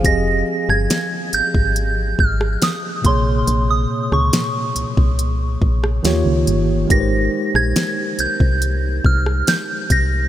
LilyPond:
<<
  \new Staff \with { instrumentName = "Synth bell" } { \time 4/4 \key f \minor \tempo 4 = 70 bes'''8. aes'''8. g'''4 f'''8 ees'''8 c'''8~ | c'''16 ees'''8 des'''4 r2 r16 | bes'''8. aes'''8. g'''4 f'''8 g'''8 bes'''8 | }
  \new Staff \with { instrumentName = "Tine electric piano" } { \time 4/4 \key f \minor << { f''16 r2. r8. | r1 | r1 | } \\ { <f c' g' aes' ees''>2.~ <f c' g' aes' ees''>8 <bes, c bes aes' des''>8~ | <bes, c bes aes' des''>2. <ees bes f' g' des''>4 | <aes ees' g' bes' b' c''>1 | } >> }
  \new Staff \with { instrumentName = "FM bass" } { \clef bass \time 4/4 \key f \minor f,,8 r16 g,,16 r8 aes,,16 aes,,8. aes,,8 r8 bes,,8 | bes,,8 r16 des,16 r8 c,16 c,8. bes,,8 ees,16 des,16 g,,8 | aes,,8 r16 bes,,16 r8 c,16 c,8. c,8 r8 c,8 | }
  \new DrumStaff \with { instrumentName = "Drums" } \drummode { \time 4/4 <hh bd>8. ss16 <hh sn>8 hh16 bd16 hh8 bd16 ss16 <hh sn>8 <hh bd>8 | hh8. ss16 <hh sn>8 hh16 bd16 hh8 bd16 ss16 <hh sn>8 hh8 | <hh bd>8. ss16 <hh sn>8 hh16 bd16 hh8 bd16 ss16 <hh sn>8 <hh bd>8 | }
>>